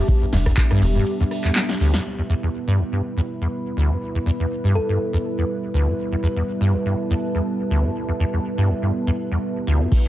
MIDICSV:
0, 0, Header, 1, 7, 480
1, 0, Start_track
1, 0, Key_signature, 1, "minor"
1, 0, Tempo, 491803
1, 79, Time_signature, 4, 2, 24, 8
1, 9839, End_track
2, 0, Start_track
2, 0, Title_t, "Ambient pad"
2, 0, Program_c, 0, 92
2, 0, Note_on_c, 0, 59, 84
2, 0, Note_on_c, 0, 67, 76
2, 0, Note_on_c, 0, 76, 80
2, 0, Note_on_c, 0, 81, 81
2, 1988, Note_off_c, 0, 59, 0
2, 1999, Note_off_c, 0, 76, 0
2, 2000, Note_off_c, 0, 67, 0
2, 2000, Note_off_c, 0, 81, 0
2, 2000, Note_on_c, 0, 59, 70
2, 2238, Note_on_c, 0, 67, 71
2, 2321, Note_on_c, 0, 76, 63
2, 2354, Note_on_c, 0, 83, 72
2, 5793, Note_on_c, 0, 81, 70
2, 5941, Note_off_c, 0, 83, 0
2, 9839, Note_off_c, 0, 59, 0
2, 9839, Note_off_c, 0, 67, 0
2, 9839, Note_off_c, 0, 76, 0
2, 9839, Note_off_c, 0, 81, 0
2, 9839, End_track
3, 0, Start_track
3, 0, Title_t, "Synth pluck"
3, 0, Program_c, 1, 84
3, 4640, Note_on_c, 1, 69, 92
3, 5316, Note_off_c, 1, 69, 0
3, 9839, End_track
4, 0, Start_track
4, 0, Title_t, "Analog synth pad"
4, 0, Program_c, 2, 89
4, 0, Note_on_c, 2, 55, 83
4, 0, Note_on_c, 2, 62, 75
4, 0, Note_on_c, 2, 67, 90
4, 1960, Note_off_c, 2, 55, 0
4, 1961, Note_off_c, 2, 62, 0
4, 1987, Note_off_c, 2, 67, 0
4, 1999, Note_on_c, 2, 55, 80
4, 1999, Note_on_c, 2, 71, 85
4, 2000, Note_on_c, 2, 64, 69
4, 9640, Note_off_c, 2, 55, 0
4, 9640, Note_off_c, 2, 64, 0
4, 9640, Note_off_c, 2, 71, 0
4, 9679, Note_on_c, 2, 55, 85
4, 9679, Note_on_c, 2, 64, 74
4, 9679, Note_on_c, 2, 71, 87
4, 9839, Note_off_c, 2, 55, 0
4, 9839, Note_off_c, 2, 64, 0
4, 9839, Note_off_c, 2, 71, 0
4, 9839, End_track
5, 0, Start_track
5, 0, Title_t, "Acid bass"
5, 0, Program_c, 3, 38
5, 211, Note_on_c, 3, 40, 78
5, 247, Note_off_c, 3, 40, 0
5, 320, Note_on_c, 3, 40, 109
5, 363, Note_off_c, 3, 40, 0
5, 451, Note_on_c, 3, 40, 79
5, 510, Note_off_c, 3, 40, 0
5, 690, Note_on_c, 3, 43, 103
5, 800, Note_on_c, 3, 38, 109
5, 814, Note_off_c, 3, 43, 0
5, 843, Note_off_c, 3, 38, 0
5, 930, Note_on_c, 3, 43, 79
5, 1020, Note_off_c, 3, 43, 0
5, 1170, Note_on_c, 3, 40, 104
5, 1206, Note_off_c, 3, 40, 0
5, 1411, Note_on_c, 3, 40, 81
5, 1470, Note_off_c, 3, 40, 0
5, 1759, Note_on_c, 3, 38, 106
5, 1890, Note_on_c, 3, 43, 78
5, 1905, Note_off_c, 3, 38, 0
5, 1950, Note_off_c, 3, 43, 0
5, 2130, Note_on_c, 3, 40, 74
5, 2166, Note_off_c, 3, 40, 0
5, 2239, Note_on_c, 3, 40, 103
5, 2282, Note_off_c, 3, 40, 0
5, 2370, Note_on_c, 3, 40, 80
5, 2430, Note_off_c, 3, 40, 0
5, 2610, Note_on_c, 3, 43, 94
5, 2719, Note_on_c, 3, 38, 100
5, 2734, Note_off_c, 3, 43, 0
5, 2762, Note_off_c, 3, 38, 0
5, 2850, Note_on_c, 3, 43, 72
5, 2940, Note_off_c, 3, 43, 0
5, 3090, Note_on_c, 3, 40, 96
5, 3126, Note_off_c, 3, 40, 0
5, 3330, Note_on_c, 3, 40, 78
5, 3390, Note_off_c, 3, 40, 0
5, 3679, Note_on_c, 3, 38, 99
5, 3811, Note_on_c, 3, 43, 74
5, 3825, Note_off_c, 3, 38, 0
5, 3870, Note_off_c, 3, 43, 0
5, 4050, Note_on_c, 3, 40, 79
5, 4086, Note_off_c, 3, 40, 0
5, 4159, Note_on_c, 3, 40, 103
5, 4202, Note_off_c, 3, 40, 0
5, 4290, Note_on_c, 3, 40, 80
5, 4350, Note_off_c, 3, 40, 0
5, 4530, Note_on_c, 3, 43, 96
5, 4640, Note_on_c, 3, 38, 98
5, 4654, Note_off_c, 3, 43, 0
5, 4683, Note_off_c, 3, 38, 0
5, 4770, Note_on_c, 3, 43, 74
5, 4860, Note_off_c, 3, 43, 0
5, 5010, Note_on_c, 3, 40, 102
5, 5046, Note_off_c, 3, 40, 0
5, 5250, Note_on_c, 3, 40, 77
5, 5310, Note_off_c, 3, 40, 0
5, 5599, Note_on_c, 3, 38, 101
5, 5730, Note_on_c, 3, 43, 76
5, 5745, Note_off_c, 3, 38, 0
5, 5790, Note_off_c, 3, 43, 0
5, 5970, Note_on_c, 3, 40, 78
5, 6006, Note_off_c, 3, 40, 0
5, 6079, Note_on_c, 3, 40, 105
5, 6122, Note_off_c, 3, 40, 0
5, 6210, Note_on_c, 3, 40, 75
5, 6270, Note_off_c, 3, 40, 0
5, 6450, Note_on_c, 3, 43, 99
5, 6559, Note_on_c, 3, 38, 103
5, 6573, Note_off_c, 3, 43, 0
5, 6602, Note_off_c, 3, 38, 0
5, 6690, Note_on_c, 3, 43, 74
5, 6780, Note_off_c, 3, 43, 0
5, 6930, Note_on_c, 3, 40, 102
5, 6966, Note_off_c, 3, 40, 0
5, 7170, Note_on_c, 3, 40, 78
5, 7230, Note_off_c, 3, 40, 0
5, 7519, Note_on_c, 3, 38, 100
5, 7650, Note_on_c, 3, 43, 75
5, 7665, Note_off_c, 3, 38, 0
5, 7710, Note_off_c, 3, 43, 0
5, 7890, Note_on_c, 3, 40, 78
5, 7926, Note_off_c, 3, 40, 0
5, 7999, Note_on_c, 3, 40, 100
5, 8042, Note_off_c, 3, 40, 0
5, 8130, Note_on_c, 3, 40, 75
5, 8190, Note_off_c, 3, 40, 0
5, 8370, Note_on_c, 3, 43, 101
5, 8480, Note_on_c, 3, 38, 103
5, 8494, Note_off_c, 3, 43, 0
5, 8523, Note_off_c, 3, 38, 0
5, 8610, Note_on_c, 3, 43, 76
5, 8700, Note_off_c, 3, 43, 0
5, 8850, Note_on_c, 3, 40, 100
5, 8886, Note_off_c, 3, 40, 0
5, 9090, Note_on_c, 3, 40, 75
5, 9150, Note_off_c, 3, 40, 0
5, 9440, Note_on_c, 3, 38, 101
5, 9570, Note_on_c, 3, 43, 75
5, 9585, Note_off_c, 3, 38, 0
5, 9630, Note_off_c, 3, 43, 0
5, 9839, End_track
6, 0, Start_track
6, 0, Title_t, "Sub bass"
6, 0, Program_c, 4, 38
6, 319, Note_on_c, 4, 28, 95
6, 487, Note_off_c, 4, 28, 0
6, 799, Note_on_c, 4, 28, 99
6, 967, Note_off_c, 4, 28, 0
6, 9839, End_track
7, 0, Start_track
7, 0, Title_t, "Drums"
7, 79, Note_on_c, 9, 36, 116
7, 79, Note_on_c, 9, 42, 72
7, 79, Note_on_c, 9, 51, 58
7, 177, Note_off_c, 9, 36, 0
7, 177, Note_off_c, 9, 42, 0
7, 177, Note_off_c, 9, 51, 0
7, 210, Note_on_c, 9, 42, 42
7, 308, Note_off_c, 9, 42, 0
7, 319, Note_on_c, 9, 38, 61
7, 319, Note_on_c, 9, 46, 106
7, 319, Note_on_c, 9, 51, 82
7, 417, Note_off_c, 9, 38, 0
7, 417, Note_off_c, 9, 46, 0
7, 417, Note_off_c, 9, 51, 0
7, 450, Note_on_c, 9, 36, 61
7, 450, Note_on_c, 9, 37, 68
7, 450, Note_on_c, 9, 42, 43
7, 548, Note_off_c, 9, 36, 0
7, 548, Note_off_c, 9, 37, 0
7, 548, Note_off_c, 9, 42, 0
7, 559, Note_on_c, 9, 42, 73
7, 559, Note_on_c, 9, 51, 60
7, 560, Note_on_c, 9, 36, 112
7, 560, Note_on_c, 9, 39, 123
7, 657, Note_off_c, 9, 36, 0
7, 657, Note_off_c, 9, 39, 0
7, 657, Note_off_c, 9, 42, 0
7, 657, Note_off_c, 9, 51, 0
7, 690, Note_on_c, 9, 37, 59
7, 690, Note_on_c, 9, 42, 44
7, 788, Note_off_c, 9, 37, 0
7, 788, Note_off_c, 9, 42, 0
7, 799, Note_on_c, 9, 46, 107
7, 799, Note_on_c, 9, 51, 84
7, 897, Note_off_c, 9, 46, 0
7, 897, Note_off_c, 9, 51, 0
7, 930, Note_on_c, 9, 42, 42
7, 1028, Note_off_c, 9, 42, 0
7, 1039, Note_on_c, 9, 42, 70
7, 1039, Note_on_c, 9, 51, 60
7, 1137, Note_off_c, 9, 42, 0
7, 1137, Note_off_c, 9, 51, 0
7, 1170, Note_on_c, 9, 42, 44
7, 1268, Note_off_c, 9, 42, 0
7, 1280, Note_on_c, 9, 37, 37
7, 1280, Note_on_c, 9, 46, 99
7, 1280, Note_on_c, 9, 51, 78
7, 1377, Note_off_c, 9, 37, 0
7, 1377, Note_off_c, 9, 46, 0
7, 1377, Note_off_c, 9, 51, 0
7, 1410, Note_on_c, 9, 42, 41
7, 1411, Note_on_c, 9, 39, 37
7, 1508, Note_off_c, 9, 39, 0
7, 1508, Note_off_c, 9, 42, 0
7, 1520, Note_on_c, 9, 38, 64
7, 1520, Note_on_c, 9, 39, 124
7, 1520, Note_on_c, 9, 42, 70
7, 1520, Note_on_c, 9, 51, 62
7, 1617, Note_off_c, 9, 38, 0
7, 1617, Note_off_c, 9, 42, 0
7, 1617, Note_off_c, 9, 51, 0
7, 1618, Note_off_c, 9, 39, 0
7, 1650, Note_on_c, 9, 38, 61
7, 1650, Note_on_c, 9, 42, 40
7, 1748, Note_off_c, 9, 38, 0
7, 1748, Note_off_c, 9, 42, 0
7, 1760, Note_on_c, 9, 46, 104
7, 1760, Note_on_c, 9, 51, 82
7, 1857, Note_off_c, 9, 46, 0
7, 1857, Note_off_c, 9, 51, 0
7, 1891, Note_on_c, 9, 38, 82
7, 1891, Note_on_c, 9, 42, 44
7, 1988, Note_off_c, 9, 38, 0
7, 1988, Note_off_c, 9, 42, 0
7, 9679, Note_on_c, 9, 42, 55
7, 9679, Note_on_c, 9, 49, 107
7, 9679, Note_on_c, 9, 51, 58
7, 9680, Note_on_c, 9, 36, 121
7, 9777, Note_off_c, 9, 36, 0
7, 9777, Note_off_c, 9, 42, 0
7, 9777, Note_off_c, 9, 49, 0
7, 9777, Note_off_c, 9, 51, 0
7, 9839, End_track
0, 0, End_of_file